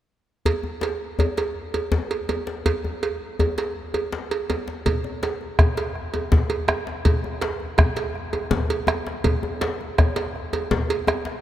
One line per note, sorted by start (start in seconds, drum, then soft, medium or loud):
0.46 cowbell medium
0.46 djembe bass medium
0.63 djembe tone soft
0.81 cowbell soft
0.81 djembe slap medium
1.19 cowbell soft
1.19 djembe tone medium
1.19 djembe bass medium
1.37 cowbell soft
1.37 djembe slap soft
1.74 cowbell soft
1.74 djembe tone soft
1.92 djembe slap medium
1.92 djembe bass medium
2.11 cowbell soft
2.11 djembe slap soft
2.29 cowbell soft
2.29 djembe tone medium
2.47 djembe slap soft
2.66 cowbell soft
2.66 djembe bass medium
2.85 djembe tone medium
3.03 cowbell soft
3.39 cowbell soft
3.39 djembe tone medium
3.39 djembe bass medium
3.58 cowbell soft
3.58 djembe slap soft
3.94 cowbell soft
3.94 djembe tone soft
4.12 djembe slap medium
4.31 cowbell soft
4.31 djembe slap soft
4.50 cowbell soft
4.50 djembe tone medium
4.68 djembe slap soft
4.86 bombo low medium
4.86 cowbell soft
4.86 djembe bass medium
5.04 djembe tone medium
5.23 bombo rim soft
5.23 cowbell soft
5.23 djembe slap medium
5.41 djembe slap soft
5.59 bombo rim medium
5.59 bombo low loud
5.59 cowbell soft
5.59 djembe tone medium
5.59 djembe bass medium
5.77 cowbell soft
5.77 djembe slap medium
5.95 bombo rim soft
6.14 cowbell soft
6.14 djembe tone medium
6.32 bombo low loud
6.32 djembe slap medium
6.32 djembe bass medium
6.50 cowbell soft
6.50 djembe slap soft
6.68 bombo rim medium
6.68 cowbell soft
6.68 djembe tone medium
6.87 djembe slap soft
7.05 bombo low loud
7.05 cowbell soft
7.05 djembe bass medium
7.24 djembe tone medium
7.41 bombo rim soft
7.41 cowbell soft
7.41 djembe slap medium
7.60 djembe slap soft
7.78 bombo rim loud
7.78 bombo low medium
7.78 cowbell soft
7.78 djembe tone medium
7.78 djembe bass medium
7.96 cowbell soft
7.96 djembe slap medium
8.15 bombo rim soft
8.33 cowbell soft
8.33 djembe tone medium
8.51 bombo low medium
8.51 djembe slap medium
8.51 djembe bass medium
8.69 cowbell soft
8.69 djembe slap soft
8.87 bombo rim medium
8.87 cowbell soft
8.87 djembe tone medium
9.07 bombo rim soft
9.07 djembe slap medium
9.24 bombo low medium
9.24 cowbell medium
9.24 djembe bass medium
9.43 djembe tone medium
9.61 bombo rim soft
9.61 cowbell soft
9.61 djembe slap medium
9.81 djembe slap soft
9.98 bombo rim medium
9.98 bombo low medium
9.98 cowbell soft
9.98 djembe tone medium
9.98 djembe bass medium
10.16 cowbell soft
10.16 djembe slap medium
10.36 bombo rim soft
10.53 cowbell soft
10.53 djembe tone medium
10.71 bombo low medium
10.71 djembe slap medium
10.71 djembe bass medium
10.89 cowbell medium
10.89 djembe slap soft
11.07 bombo rim medium
11.07 cowbell soft
11.07 djembe tone medium
11.25 bombo rim soft
11.25 djembe slap medium